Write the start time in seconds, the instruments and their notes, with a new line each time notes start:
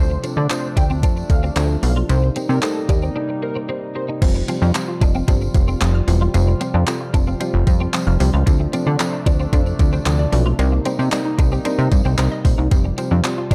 Already playing: analog synth bass D2, analog synth pad C3 F3 A3 D4, analog synth lead C5
0.10 muted clean electric guitar stroke
0.23 clean electric guitar C4, synth pluck D4 F4 A4 C5, closed hi-hat, tambourine
0.37 analog synth bass D3, clean electric guitar D4, analog synth lead D5
0.50 synth pluck D4 F4 A4 C5, analog synth lead C5, muted clean electric guitar stroke, clap, closed hi-hat, tambourine
0.77 analog synth bass D2, synth pluck D4 F4 A4 C5, clean electric guitar D4, analog synth lead G5, kick, closed hi-hat, tambourine
0.90 clean electric guitar C4, tambourine
1.03 analog synth bass F2, synth pluck D4 F4 A4 C5, clean electric guitar D4, kick, closed hi-hat, tambourine
1.17 muted clean electric guitar stroke, tambourine
1.30 analog synth bass D2, synth pluck D4 F4 A4 C5, analog synth lead F5, kick, closed hi-hat, tambourine
1.43 clean electric guitar C4, tambourine
1.56 analog synth bass D2, clean electric guitar C4, synth pluck D4 F4 A4 C5, clap, closed hi-hat, tambourine
1.83 analog synth bass B1, synth pluck D4 F4 A4 C5, analog synth lead F5, muted clean electric guitar stroke, open hi-hat, tambourine
1.96 clean electric guitar F4
2.09 analog synth bass C2, analog synth pad G3 A#3 D#4, synth pluck D#4 G4 A#4 C5, analog synth lead C5, closed hi-hat, tambourine
2.23 muted clean electric guitar stroke
2.36 clean electric guitar C4, synth pluck D#4 G4 A#4 C5, closed hi-hat, tambourine
2.49 analog synth bass C3, clean electric guitar D4, analog synth lead A#4, tambourine
2.62 synth pluck D#4 G4 A#4 C5, analog synth lead A4, muted clean electric guitar stroke, clap, closed hi-hat, tambourine
2.89 analog synth bass D#2, clean electric guitar D4, synth pluck D#4 G4 A#4 D#5, analog synth lead G4, kick, closed hi-hat, tambourine
3.02 clean electric guitar C4, tambourine
3.16 clean electric guitar D4, synth pluck D#4 G4 A#4 D5
3.29 muted clean electric guitar stroke
3.42 synth pluck D#4 G4 A#4 C5, analog synth lead A#4
3.56 clean electric guitar C4
3.69 clean electric guitar C4, synth pluck D#4 G4 A#4 C5
3.95 synth pluck D#4 G4 A#4 C5, analog synth lead C5, muted clean electric guitar stroke
4.09 clean electric guitar D#4
4.22 analog synth bass F1, analog synth pad C3 F3 G3 F4, synth arpeggio sound F3, synth pluck G3 C4 F4 G4 C5, kick, closed hi-hat, crash, tambourine
4.35 synth arpeggio sound G3, muted clean electric guitar stroke
4.48 synth arpeggio sound F3, synth pluck G3 C4 F4 G4 C5, clean electric guitar C4, closed hi-hat, tambourine
4.62 analog synth bass F2, synth arpeggio sound C4, clean electric guitar D4, tambourine
4.75 synth arpeggio sound F3, synth pluck G3 C4 F4 G4 C5, muted clean electric guitar stroke, clap, closed hi-hat, tambourine
4.88 synth arpeggio sound F4
5.01 analog synth bass F1, synth arpeggio sound F3, synth pluck G3 C4 F4 G4 D#5, clean electric guitar D4, kick, closed hi-hat, tambourine
5.14 clean electric guitar C4, synth arpeggio sound F5, tambourine
5.28 analog synth bass G1, synth arpeggio sound F3, synth pluck G3 C4 F4 G4 C5, clean electric guitar D4, kick, closed hi-hat, tambourine
5.41 muted clean electric guitar stroke, tambourine
5.54 analog synth bass F1, synth arpeggio sound F3, synth pluck G3 C4 F4 G4 C5, kick, closed hi-hat, tambourine
5.68 clean electric guitar C4, synth arpeggio sound C6, tambourine
5.81 analog synth bass F1, synth arpeggio sound F3, synth pluck G3 C4 F4 G4 C5, clean electric guitar C4, clap, closed hi-hat, tambourine
5.95 synth arpeggio sound F6
6.07 analog synth bass E1, synth arpeggio sound F3, synth pluck G3 C4 F4 G4 C5, muted clean electric guitar stroke, open hi-hat, tambourine
6.21 synth arpeggio sound G3, clean electric guitar F4
6.34 analog synth bass F1, synth arpeggio sound F3, synth pluck G3 C4 F4 G4 C5, closed hi-hat, tambourine
6.48 synth arpeggio sound G3, muted clean electric guitar stroke
6.61 synth arpeggio sound F3, synth pluck G3 C4 F4 G4 C5, clean electric guitar C4, closed hi-hat, tambourine
6.74 analog synth bass F2, synth arpeggio sound C4, clean electric guitar D4
6.87 synth arpeggio sound F3, synth pluck G3 C4 F4 G4 A4, muted clean electric guitar stroke, clap, closed hi-hat, tambourine
7.01 synth arpeggio sound F4
7.14 analog synth bass F1, synth arpeggio sound F3, synth pluck G3 C4 F4 G4 C5, clean electric guitar D4, kick, closed hi-hat, tambourine
7.27 clean electric guitar C4, synth arpeggio sound F5, tambourine
7.40 synth arpeggio sound F3, synth pluck G3 C4 F4 G4 C5, clean electric guitar D4, closed hi-hat, tambourine
7.54 analog synth bass F1, muted clean electric guitar stroke
7.67 analog synth bass F2, synth arpeggio sound F3, synth pluck G3 C4 F4 G4 C5, kick, closed hi-hat, tambourine
7.80 clean electric guitar C4, synth arpeggio sound C6
7.93 synth arpeggio sound F3, synth pluck G3 C4 F4 G4 C5, clean electric guitar C4, clap, closed hi-hat, tambourine
8.07 analog synth bass F1, synth arpeggio sound F6
8.20 analog synth bass C2, synth arpeggio sound F3, synth pluck G3 C4 F4 G4 C5, muted clean electric guitar stroke, open hi-hat, tambourine
8.33 analog synth bass C#2, synth arpeggio sound G3, clean electric guitar F4
8.46 analog synth bass D2, synth arpeggio sound F3, analog synth pad A3 D4, synth pluck C4 D4 F4 A4 C5, kick, closed hi-hat, tambourine
8.60 synth arpeggio sound A3, muted clean electric guitar stroke
8.73 synth arpeggio sound F3, synth pluck C4 D4 F4 A4 C5, clean electric guitar C4, closed hi-hat, tambourine
8.87 analog synth bass D3, synth arpeggio sound C4, clean electric guitar D4
9.00 synth arpeggio sound F3, synth pluck C4 D4 F4 A4 C5, muted clean electric guitar stroke, clap, closed hi-hat, tambourine
9.13 synth arpeggio sound D4
9.26 analog synth bass D2, synth arpeggio sound F3, synth pluck C4 D4 F4 A4 C5, clean electric guitar D4, kick, closed hi-hat, tambourine
9.39 clean electric guitar C4, synth arpeggio sound F4, tambourine
9.53 analog synth bass F2, synth arpeggio sound F3, synth pluck C4 D4 F4 A4 C5, clean electric guitar D4, kick, closed hi-hat, tambourine
9.66 muted clean electric guitar stroke, tambourine
9.79 analog synth bass D2, synth arpeggio sound F3, synth pluck C4 D4 F4 A4 D5, kick, closed hi-hat, tambourine
9.93 clean electric guitar C4, synth arpeggio sound C5, tambourine
10.06 analog synth bass D2, synth arpeggio sound F3, synth pluck C4 D4 F4 A4 D5, clean electric guitar C4, clap, closed hi-hat, tambourine
10.19 synth arpeggio sound D5
10.32 analog synth bass B1, synth arpeggio sound F3, synth pluck C4 D4 F4 A4 D5, muted clean electric guitar stroke, open hi-hat, tambourine
10.46 synth arpeggio sound A3, clean electric guitar F4
10.59 analog synth bass C2, synth arpeggio sound G3, analog synth pad G3 A#3 D#4, synth pluck C4 D#4 G4 A#4 C5, closed hi-hat, tambourine
10.72 synth arpeggio sound A#3, muted clean electric guitar stroke
10.85 synth arpeggio sound G3, synth pluck C4 D#4 G4 A#4 C5, clean electric guitar C4, closed hi-hat, tambourine
10.99 analog synth bass C3, synth arpeggio sound C4, clean electric guitar D4, tambourine
11.12 synth arpeggio sound G3, synth pluck C4 D#4 G4 A#4 C5, muted clean electric guitar stroke, clap, closed hi-hat, tambourine
11.25 synth arpeggio sound D#4
11.38 analog synth bass C2, synth arpeggio sound G3, synth pluck C4 D#4 G4 A#4 D#5, clean electric guitar D4, kick, closed hi-hat, tambourine
11.52 clean electric guitar C4, synth arpeggio sound G4, tambourine
11.65 synth arpeggio sound G3, synth pluck C4 D#4 G4 A#4 C5, clean electric guitar D4, closed hi-hat, tambourine
11.78 analog synth bass C3, muted clean electric guitar stroke, tambourine
11.91 analog synth bass G2, synth arpeggio sound G3, synth pluck C4 D#4 G4 A#4 C5, kick, closed hi-hat, tambourine
12.05 analog synth bass C2, clean electric guitar C4, synth arpeggio sound C5, tambourine
12.18 analog synth bass C2, synth arpeggio sound G3, synth pluck C4 D#4 G4 A#4 C5, clean electric guitar C4, clap, closed hi-hat, tambourine
12.32 synth arpeggio sound D#5
12.45 analog synth bass A#1, synth arpeggio sound G3, synth pluck C4 D#4 G4 A#4 C5, muted clean electric guitar stroke, kick, open hi-hat, tambourine
12.58 analog synth bass C2, synth arpeggio sound A#3, clean electric guitar D#4
12.71 analog synth bass F1, synth arpeggio sound F3, analog synth pad F3 F4, synth pluck G3 C4 F4 G4 C5, kick, closed hi-hat, tambourine
12.85 synth arpeggio sound G3, muted clean electric guitar stroke
12.98 synth arpeggio sound F3, synth pluck G3 C4 F4 G4 C5, clean electric guitar C4, closed hi-hat, tambourine
13.11 analog synth bass F2, synth arpeggio sound C4, clean electric guitar D4
13.24 synth arpeggio sound F3, synth pluck G3 C4 F4 G4 C5, muted clean electric guitar stroke, clap, closed hi-hat, tambourine
13.38 synth arpeggio sound F4
13.51 analog synth bass F1, synth arpeggio sound F3, synth pluck G3 C4 F4 G4 C5, clean electric guitar D4, kick, closed hi-hat, tambourine